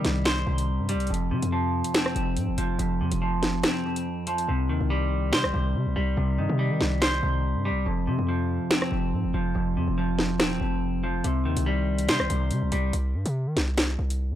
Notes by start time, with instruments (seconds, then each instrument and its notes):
Already playing: clean electric guitar C3 D#3 G3
0.05 808-style bass C2, snare, closed hi-hat
0.25 clean electric guitar C5, finger snap, snare, closed hi-hat
0.47 808-style bass C2, clean electric guitar C3
0.58 closed hi-hat
0.79 808-style bass G2
0.89 clean electric guitar G3, closed hi-hat
0.95 808-style bass C2
1.00 closed hi-hat
1.07 808-style bass F1, clean electric guitar F2, closed hi-hat
1.14 closed hi-hat
1.31 clean electric guitar C3, 808-style bass C3
1.43 808-style bass F2, closed hi-hat
1.52 clean electric guitar F3
1.84 closed hi-hat
1.94 clean electric guitar C4, finger snap, snare, closed hi-hat
2.06 cross-stick
2.16 808-style bass F1, clean electric guitar F2, closed hi-hat
2.37 808-style bass G#2, closed hi-hat
2.48 808-style bass F1
2.58 808-style bass F1, clean electric guitar F3, closed hi-hat
2.79 808-style bass F1, clean electric guitar F2, closed hi-hat
3.00 808-style bass F2, clean electric guitar C3
3.12 808-style bass F1, closed hi-hat
3.22 clean electric guitar F3
3.43 snare, closed hi-hat
3.63 clean electric guitar C4, finger snap, cross-stick, snare, closed hi-hat
3.85 clean electric guitar F2
3.96 closed hi-hat
4.27 clean electric guitar F3, closed hi-hat
4.38 closed hi-hat
4.48 808-style bass C2, clean electric guitar C3
4.69 808-style bass D#2, clean electric guitar D#3
4.81 808-style bass C2
4.90 clean electric guitar G3
5.33 808-style bass C3, clean electric guitar C5, finger snap, snare
5.44 808-style bass C2, cross-stick
5.54 808-style bass C2, clean electric guitar C3
5.75 808-style bass C3
5.86 808-style bass C2
5.96 808-style bass C2, clean electric guitar G3
6.17 808-style bass C2, clean electric guitar C3
6.38 808-style bass G2, clean electric guitar D#3
6.49 808-style bass C3
6.59 clean electric guitar G3
6.71 808-style bass D#3
6.81 808-style bass C2, snare
7.02 clean electric guitar C5, finger snap, snare
7.23 808-style bass C2, clean electric guitar C3
7.55 808-style bass G2
7.65 clean electric guitar G3
7.71 808-style bass C2
7.86 808-style bass F1, clean electric guitar F2
8.07 clean electric guitar C3, 808-style bass C3
8.19 808-style bass F2
8.29 clean electric guitar F3
8.71 clean electric guitar C4, finger snap, snare
8.82 cross-stick
8.92 808-style bass F1, clean electric guitar F2
9.13 808-style bass G#2
9.24 808-style bass F1
9.34 808-style bass F1, clean electric guitar F3
9.55 808-style bass F1, clean electric guitar F2
9.76 808-style bass F2, clean electric guitar C3
9.88 808-style bass F1
9.98 clean electric guitar F3
10.19 snare
10.40 808-style bass D#1, clean electric guitar C4, finger snap, cross-stick, snare
10.61 808-style bass F1, clean electric guitar F2
11.04 clean electric guitar F3
11.24 808-style bass C2, clean electric guitar C3, closed hi-hat
11.45 808-style bass D#2, clean electric guitar D#3
11.57 808-style bass C2, closed hi-hat
11.66 clean electric guitar G3
11.99 closed hi-hat
12.09 808-style bass C3, clean electric guitar C5, finger snap, snare, closed hi-hat
12.20 808-style bass C2, cross-stick
12.30 808-style bass C2, clean electric guitar C3, closed hi-hat
12.51 808-style bass C3, closed hi-hat
12.62 808-style bass C2
12.72 808-style bass C2, clean electric guitar G3, closed hi-hat
12.93 808-style bass C2, closed hi-hat
13.14 808-style bass G2
13.26 808-style bass C3, closed hi-hat
13.47 808-style bass D#3
13.57 808-style bass C2, snare, closed hi-hat
13.77 finger snap, snare, closed hi-hat
13.99 808-style bass C2
14.10 closed hi-hat
14.31 808-style bass G2